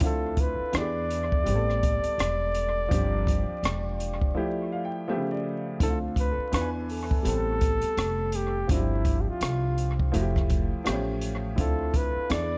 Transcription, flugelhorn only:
0, 0, Header, 1, 2, 480
1, 0, Start_track
1, 0, Tempo, 722892
1, 8, Time_signature, 4, 2, 24, 8
1, 8352, End_track
2, 0, Start_track
2, 0, Title_t, "Flugelhorn"
2, 0, Program_c, 0, 56
2, 33, Note_on_c, 0, 69, 92
2, 269, Note_on_c, 0, 71, 91
2, 279, Note_off_c, 0, 69, 0
2, 510, Note_on_c, 0, 74, 105
2, 520, Note_off_c, 0, 71, 0
2, 3379, Note_off_c, 0, 74, 0
2, 3872, Note_on_c, 0, 69, 97
2, 3974, Note_off_c, 0, 69, 0
2, 4115, Note_on_c, 0, 71, 93
2, 4325, Note_off_c, 0, 71, 0
2, 4343, Note_on_c, 0, 71, 93
2, 4448, Note_off_c, 0, 71, 0
2, 4588, Note_on_c, 0, 69, 105
2, 5546, Note_on_c, 0, 67, 85
2, 5556, Note_off_c, 0, 69, 0
2, 5788, Note_on_c, 0, 64, 86
2, 5798, Note_off_c, 0, 67, 0
2, 6116, Note_on_c, 0, 67, 54
2, 6126, Note_off_c, 0, 64, 0
2, 6167, Note_on_c, 0, 65, 82
2, 6177, Note_off_c, 0, 67, 0
2, 6639, Note_off_c, 0, 65, 0
2, 7701, Note_on_c, 0, 69, 94
2, 7944, Note_on_c, 0, 71, 91
2, 7954, Note_off_c, 0, 69, 0
2, 8176, Note_on_c, 0, 74, 109
2, 8186, Note_off_c, 0, 71, 0
2, 8352, Note_off_c, 0, 74, 0
2, 8352, End_track
0, 0, End_of_file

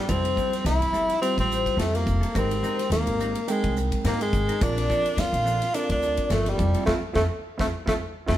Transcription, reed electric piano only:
0, 0, Header, 1, 2, 480
1, 0, Start_track
1, 0, Key_signature, -1, "major"
1, 0, Tempo, 564972
1, 75, Time_signature, 4, 2, 24, 8
1, 7117, End_track
2, 0, Start_track
2, 0, Title_t, "Reed electric piano"
2, 0, Program_c, 0, 4
2, 79, Note_on_c, 0, 55, 60
2, 82, Note_on_c, 0, 53, 58
2, 84, Note_on_c, 0, 60, 56
2, 84, Note_on_c, 0, 64, 57
2, 85, Note_on_c, 0, 69, 71
2, 965, Note_off_c, 0, 55, 0
2, 966, Note_off_c, 0, 53, 0
2, 967, Note_off_c, 0, 60, 0
2, 967, Note_off_c, 0, 64, 0
2, 968, Note_off_c, 0, 69, 0
2, 1031, Note_on_c, 0, 55, 63
2, 1032, Note_on_c, 0, 60, 61
2, 1032, Note_on_c, 0, 64, 58
2, 1033, Note_on_c, 0, 65, 57
2, 1034, Note_on_c, 0, 67, 71
2, 1921, Note_off_c, 0, 55, 0
2, 1921, Note_off_c, 0, 60, 0
2, 1921, Note_off_c, 0, 64, 0
2, 1922, Note_off_c, 0, 65, 0
2, 1922, Note_off_c, 0, 67, 0
2, 1996, Note_on_c, 0, 56, 66
2, 2001, Note_on_c, 0, 63, 58
2, 2001, Note_on_c, 0, 70, 75
2, 2002, Note_on_c, 0, 67, 62
2, 2004, Note_on_c, 0, 60, 56
2, 2883, Note_off_c, 0, 56, 0
2, 2885, Note_off_c, 0, 63, 0
2, 2885, Note_off_c, 0, 70, 0
2, 2886, Note_off_c, 0, 67, 0
2, 2887, Note_off_c, 0, 60, 0
2, 2951, Note_on_c, 0, 56, 66
2, 2952, Note_on_c, 0, 63, 62
2, 2953, Note_on_c, 0, 60, 63
2, 2957, Note_on_c, 0, 79, 64
2, 2958, Note_on_c, 0, 70, 72
2, 3840, Note_off_c, 0, 56, 0
2, 3841, Note_off_c, 0, 60, 0
2, 3841, Note_off_c, 0, 63, 0
2, 3843, Note_off_c, 0, 79, 0
2, 3844, Note_off_c, 0, 70, 0
2, 3916, Note_on_c, 0, 69, 61
2, 3917, Note_on_c, 0, 62, 59
2, 3920, Note_on_c, 0, 70, 68
2, 3921, Note_on_c, 0, 60, 58
2, 3924, Note_on_c, 0, 65, 59
2, 4802, Note_off_c, 0, 69, 0
2, 4803, Note_off_c, 0, 62, 0
2, 4804, Note_off_c, 0, 70, 0
2, 4805, Note_off_c, 0, 60, 0
2, 4806, Note_off_c, 0, 65, 0
2, 4878, Note_on_c, 0, 69, 66
2, 4881, Note_on_c, 0, 62, 62
2, 4882, Note_on_c, 0, 60, 61
2, 4882, Note_on_c, 0, 65, 62
2, 4883, Note_on_c, 0, 70, 74
2, 5580, Note_off_c, 0, 60, 0
2, 5581, Note_off_c, 0, 69, 0
2, 5582, Note_off_c, 0, 65, 0
2, 5586, Note_on_c, 0, 55, 69
2, 5587, Note_on_c, 0, 64, 61
2, 5590, Note_on_c, 0, 60, 63
2, 5591, Note_on_c, 0, 69, 77
2, 5592, Note_on_c, 0, 65, 61
2, 5598, Note_off_c, 0, 62, 0
2, 5599, Note_off_c, 0, 70, 0
2, 5819, Note_off_c, 0, 64, 0
2, 5820, Note_off_c, 0, 60, 0
2, 5825, Note_off_c, 0, 65, 0
2, 5830, Note_off_c, 0, 55, 0
2, 5830, Note_on_c, 0, 60, 86
2, 5830, Note_on_c, 0, 64, 87
2, 5832, Note_off_c, 0, 69, 0
2, 5835, Note_on_c, 0, 65, 80
2, 5916, Note_off_c, 0, 64, 0
2, 5917, Note_off_c, 0, 60, 0
2, 5920, Note_off_c, 0, 65, 0
2, 6061, Note_on_c, 0, 60, 80
2, 6063, Note_on_c, 0, 64, 88
2, 6064, Note_on_c, 0, 65, 83
2, 6151, Note_off_c, 0, 60, 0
2, 6152, Note_off_c, 0, 64, 0
2, 6153, Note_off_c, 0, 65, 0
2, 6438, Note_on_c, 0, 60, 84
2, 6438, Note_on_c, 0, 64, 83
2, 6438, Note_on_c, 0, 65, 77
2, 6510, Note_off_c, 0, 60, 0
2, 6510, Note_off_c, 0, 64, 0
2, 6510, Note_off_c, 0, 65, 0
2, 6675, Note_on_c, 0, 64, 78
2, 6677, Note_on_c, 0, 60, 86
2, 6677, Note_on_c, 0, 65, 88
2, 6748, Note_off_c, 0, 64, 0
2, 6749, Note_off_c, 0, 60, 0
2, 6750, Note_off_c, 0, 65, 0
2, 7021, Note_on_c, 0, 65, 81
2, 7025, Note_on_c, 0, 60, 86
2, 7028, Note_on_c, 0, 64, 84
2, 7111, Note_off_c, 0, 65, 0
2, 7114, Note_off_c, 0, 60, 0
2, 7116, Note_off_c, 0, 64, 0
2, 7117, End_track
0, 0, End_of_file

